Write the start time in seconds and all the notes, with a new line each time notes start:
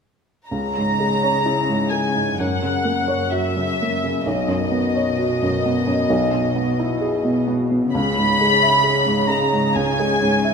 0.49 C#2 C#3 A#5
0.77 G#2
0.99 G#3
1.23 C#5
1.45 E4
1.69 G#2
1.90 G#3 G#5
2.15 G#2
2.37 F#2 F#5
2.63 C#3
2.85 A#3
3.08 C#5
3.32 F#4 E5
3.57 C#3
3.82 A#3
4.04 C#3
4.25 B1 B2 D#5
4.48 F#2
4.71 B3
4.95 C#5
5.19 F#4
5.42 F#2
5.65 B3
5.87 F#2
6.10 B1
6.33 B2
6.55 B3
6.79 E4
7.01 G#4
7.25 B2
7.47 B3
7.71 B2
7.93 C#2 C#3 B5
8.18 G#2
8.41 G#3
8.62 E5
8.83 G#4
9.06 G#2
9.28 G#3 A#5
9.53 G#2
9.75 C#2 G#5
9.99 G#3
10.21 G#2
10.44 E5